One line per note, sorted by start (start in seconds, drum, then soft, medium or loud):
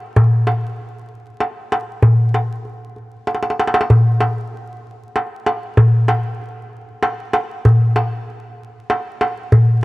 0.16 darbuka dum loud
0.47 darbuka tek medium
1.40 darbuka tek medium
1.72 darbuka tek medium
2.02 darbuka dum medium
2.34 darbuka tek medium
2.65 darbuka ka soft
2.96 darbuka ka soft
3.27 darbuka tek medium
3.35 darbuka ka medium
3.43 darbuka tek medium
3.50 darbuka ka medium
3.60 darbuka tek medium
3.67 darbuka ka medium
3.74 darbuka tek medium
3.81 darbuka ka medium
3.90 darbuka dum medium
4.20 darbuka tek medium
5.16 darbuka tek medium
5.46 darbuka tek medium
5.77 darbuka dum loud
6.08 darbuka tek medium
7.03 darbuka tek medium
7.33 darbuka tek medium
7.65 darbuka dum medium
7.96 darbuka tek medium
8.90 darbuka tek medium
9.21 darbuka tek medium
9.52 darbuka dum medium